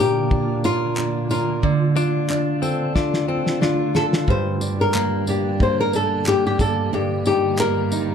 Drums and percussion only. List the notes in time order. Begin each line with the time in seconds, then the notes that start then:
0.31 kick
0.64 tambourine
0.97 clap
1.31 tambourine
1.63 kick
1.96 tambourine
2.30 clap
2.63 tambourine
2.96 kick, snare
3.14 snare
3.47 snare
3.62 snare
3.95 snare
4.13 snare
4.28 kick
4.61 tambourine
4.94 clap
5.27 tambourine
5.60 kick
5.93 tambourine
6.26 clap
6.59 kick, tambourine
7.26 tambourine
7.59 clap
7.92 tambourine